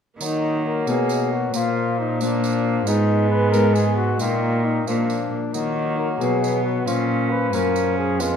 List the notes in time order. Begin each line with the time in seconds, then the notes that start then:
0.19 D#3 F#3 A#3 D#4, tambourine
0.66 A#4
0.87 B2 A#3 D#4 G#4, tambourine
1.09 tambourine
1.33 F#4
1.54 A#2 F3 A#3 F4, tambourine
2.00 D#4
2.21 F3 A#3 D4 F4, tambourine
2.44 tambourine
2.87 G#2 G#3 B3 D#4, tambourine
3.30 B4
3.51 G#3 B3 D#4 A#4, tambourine
3.74 G#4, tambourine
3.96 F#4
4.19 A#2 D#3 A#3 D#4 F4 A#4, tambourine
4.65 D#4
4.87 A#2 F3 A#3 D4 F4, tambourine
5.10 tambourine
5.54 D#3 F#3 A#3 D#4, tambourine
5.98 A#4
6.19 B2 F#3 D#4 G#4, tambourine
6.43 B3, tambourine
6.64 F#4
6.86 A#2 F3 C#4 F4, tambourine
7.31 B4
7.52 F#2 F3 A#3 C#4 A#4, tambourine
7.76 tambourine
7.98 G#4
8.19 F2 G#3 B3 F4, tambourine